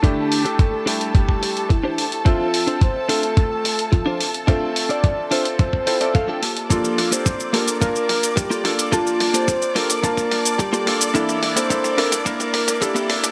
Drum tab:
HH |x-oxx-oxx-oxx-ox|x-oxx-oxx-oxx-ox|x-oxx-oxx-oxx-ox|x-oxx-oxx-oxx-ox|
SH |----------------|----------------|----------------|xx-xxx-xxx-xxx-x|
T2 |o---o---o---o---|o---o---o---o---|o---o---o---o---|o-o-o-o-o-o-o-o-|
BD |o---o---oo--o---|o---o---o---o---|o---o---oo--o---|o---o---o---o---|

HH |x-oxx-oxx-oxx-ox|x-oxx-oxx-oxx-ox|
SH |xx-xxx-xxx-xxx-x|xx-xxx-xxx-xxx-x|
T2 |o-o-o-o-o-o-o-o-|oooooooooooooooo|
BD |o---o---oo--o---|o---o---o---o---|